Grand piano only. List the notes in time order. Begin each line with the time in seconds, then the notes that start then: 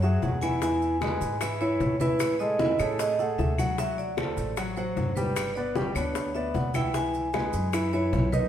0.03 F#3 F#4 G#4
0.43 E3 E4 E5
0.63 E3 E4 E5
1.02 G#3 G#4 B4
1.42 E3 E4 E5
1.61 E3 E4 E5
2.01 E3 E4 E5
2.40 G#3 G#4 A4
2.60 E3 E4 E5
2.80 A3 G#4 A4
3.19 A3 G#4 A4
3.59 F#3 F#4 F#5
3.79 F#3 F#4 F#5
4.18 A3 A4 C5
4.58 F#3 F#4 F#5
4.77 F#3 F#4 F#5
5.17 G3 G4 G5
5.57 B3 B4 D5
5.76 G3 G4 G5
5.96 B3 D4 B4
6.35 B3 B4 D5
6.75 E3 E4 E5
6.94 E3 E4 E5
7.34 G#3 G#4 B4
7.73 E3 E4 E5
7.93 E3 E4 E5
8.33 D#3 D#4 D#5